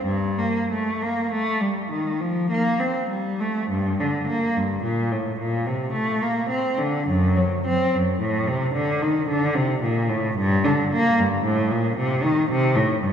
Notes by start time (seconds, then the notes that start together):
0.04 G2
0.39 A#3
0.71 A3
1.02 A#3
1.32 A3
1.61 G3
1.91 D#3
2.21 F3
2.50 A#3
2.79 C4
3.09 G3
3.40 A3
3.70 G2
4.00 D3
4.28 A#3
4.57 G2
4.83 A#2
5.11 A2
5.39 A#2
5.67 C3
5.93 A3
6.22 A#3
6.49 C4
6.78 D3
7.07 F#2
7.37 F#3
7.66 C4
7.95 F#2
8.20 A2
8.48 C3
8.74 D3
9.02 D#3
9.29 D3
9.55 C3
9.82 A#2
10.09 A2
10.36 G2
10.64 D3
10.93 A#3
11.19 G2
11.44 A2
11.71 A#2
11.97 C3
12.23 D#3
12.50 C3
12.76 A2
13.02 G2